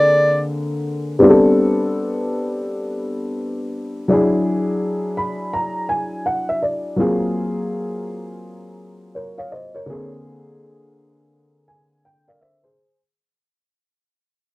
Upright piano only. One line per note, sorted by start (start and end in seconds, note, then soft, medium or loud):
0.00 1.15 D3 medium
0.00 1.16 A#3 medium
0.00 1.17 C4 medium
0.00 1.17 G#4 medium
1.19 4.05 G3 medium
1.19 4.05 B3 medium
1.19 4.06 C4 medium
1.19 4.07 D4 medium
1.19 1.30 G4 medium
1.30 4.10 A4 medium
4.08 6.94 F#3 medium
4.08 6.95 D4 medium
4.08 6.95 E4 medium
4.08 6.96 G#4 medium
5.17 5.51 B5 medium
5.53 5.87 A#5 medium
5.89 6.23 G#5 medium
6.26 6.47 F#5 medium
6.49 6.61 E5 medium
6.62 6.96 D5 medium
6.96 9.83 F#3 medium
6.96 9.83 A#3 medium
6.96 9.83 C4 medium
6.96 9.84 F4 medium
6.96 9.85 G#4 medium
9.15 9.37 A#4 medium
9.15 9.37 C#5 medium
9.38 9.51 C#5 medium
9.38 9.51 F5 medium
9.52 9.74 C5 soft
9.52 9.74 D#5 medium
9.75 10.09 A#4 soft
9.75 10.09 C#5 medium
9.86 12.72 D3 medium
9.86 12.73 A#3 medium
9.86 12.74 C4 medium
9.90 12.02 G#4 medium
11.68 12.02 G#5 medium
12.05 12.26 G5 medium
12.28 12.41 A#4 soft
12.28 12.40 D5 medium
12.28 12.40 F5 medium
12.41 12.62 C5 soft
12.41 12.63 E5 medium
12.63 12.98 G#4 soft
12.63 12.98 C5 medium